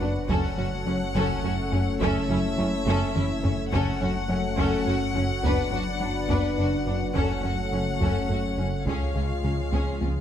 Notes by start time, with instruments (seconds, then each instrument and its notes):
Already playing: detuned saw bass F#1, analog synth pad F#3 F#4 B4 D5, french horn section B3 D4, violin section F#5
0.00 cello section F#2, analog synth bass F#2, violin section D4, viola section D4, synth pluck B4
0.29 double bass section F#1, analog synth bass F#2, cello section F#2, synth pluck F#3, french horn section A3 C#4, viola section C#4, analog synth pad A4 C#5, violin section A4 F#5, taiko
0.57 double bass section F#1, cello section F#2, analog synth bass F#3, synth pluck C#4, viola section C#4, violin section F#4
0.86 double bass section F#1, cello section F#2, analog synth bass F#3, viola section C#4, synth pluck C#4, violin section C#4
1.15 double bass section F#1, analog synth bass F#2, cello section F#2, synth pluck F#3, viola section C#4, violin section A4, taiko
1.44 double bass section F#1, analog synth bass F#2, cello section F#2, synth pluck A3, viola section C#4, violin section F#4
1.72 double bass section F#1, analog synth bass F#2, cello section F#2, viola section C#4, violin section C#4, synth pluck F#4
1.99 double bass section F#1, detuned saw bass F#1, cello section F#2, analog synth bass F#2, analog synth pad A3 E4, synth pluck A3, viola section C#4, violin section A4 E5, taiko
2.29 double bass section F#1, cello section F#2, analog synth bass F#3, viola section C#4, synth pluck E4, violin section E4
2.58 double bass section F#1, cello section F#2, analog synth bass F#3, viola section C#4, violin section C#4, synth pluck E4
2.86 double bass section F#1, cello section F#2, analog synth bass F#2, synth pluck A3, viola section C#4, violin section A4, taiko high
3.15 double bass section F#1, cello section F#2, analog synth bass F#2, synth pluck C#4, viola section C#4, violin section E4, taiko mid
3.44 double bass section F#1, cello section F#2, analog synth bass F#2, viola section C#4, violin section C#4, synth pluck A4, taiko low
3.72 double bass section F#1, cello section F#2, analog synth bass F#2, analog synth pad F#3 F#4, synth pluck F#3, french horn section A3 C#4, viola section C#4, violin section A4 F#5, taiko
4.00 double bass section F#1, cello section F#2, analog synth bass F#3, viola section C#4, synth pluck C#4, violin section F#4
4.28 double bass section F#1, cello section F#2, analog synth bass F#3, viola section C#4, synth pluck C#4, violin section C#4
4.57 double bass section F#1, cello section F#2, analog synth bass F#2, synth pluck F#3, viola section C#4, violin section A4, taiko
4.86 double bass section F#1, cello section F#2, analog synth bass F#2, synth pluck A3, viola section C#4, violin section F#4
5.14 double bass section F#1, cello section F#2, analog synth bass F#2, viola section C#4, violin section C#4, synth pluck F#4
5.42 double bass section F#1, cello section F#2, analog synth bass F#2, synth pluck B3, french horn section B3 D4, viola section D4, analog synth pad B4 D5, violin section B4, taiko
5.71 double bass section F#1, cello section F#2, analog synth bass F#3, viola section D4, synth pluck F#4, violin section F#4
6.00 double bass section F#1, cello section F#2, analog synth bass F#3, viola section D4, synth pluck F#4
6.04 violin section D4
6.28 double bass section F#1, cello section F#2, analog synth bass F#2, synth pluck B3, viola section D4, violin section B4, taiko
6.57 double bass section F#1, cello section F#2, analog synth bass F#2, viola section D4, synth pluck D4, violin section F#4
6.86 double bass section F#1, cello section F#2, analog synth bass F#2, viola section D4, violin section D4, synth pluck B4
7.14 double bass section F#1, detuned saw bass F#1, cello section F#2, analog synth bass F#2, synth pluck F#3, french horn section A3 C#4, viola section C#4, analog synth pad A4 C#5, violin section A4 F#5, taiko
7.43 double bass section F#1, cello section F#2, analog synth bass F#3, viola section C#4, synth pluck C#4, violin section F#4
7.72 double bass section F#1, cello section F#2, analog synth bass F#3, synth pluck C#4, violin section C#4, viola section C#4
8.00 double bass section F#1, analog synth bass F#2, cello section F#2, synth pluck F#3, viola section C#4, violin section A4, taiko
8.29 double bass section F#1, cello section F#2, analog synth bass F#2, synth pluck A3, viola section C#4, violin section F#4
8.57 double bass section F#1, analog synth bass F#2, cello section F#2, viola section C#4, violin section C#4, synth pluck F#4
8.85 cello section C#2, double bass section C#2, analog synth bass C#2, detuned saw bass C#2, synth pluck C#3, analog synth pad G#3 F4 G#4, french horn section G#3 F4, viola section C#4, violin section G#4 F5, taiko
9.15 cello section C#2, double bass section C#2, analog synth bass C#3, synth pluck G#3, viola section C#4, violin section F4
9.43 cello section C#2, double bass section C#2, analog synth bass C#3, synth pluck G#3, violin section C#4, viola section C#4
9.72 double bass section C#2, cello section C#2, analog synth bass C#2, synth pluck C#3, viola section C#4, violin section G#4, taiko high
10.01 double bass section C#2, analog synth bass C#2, cello section C#2, synth pluck F3, viola section C#4, violin section F4, taiko high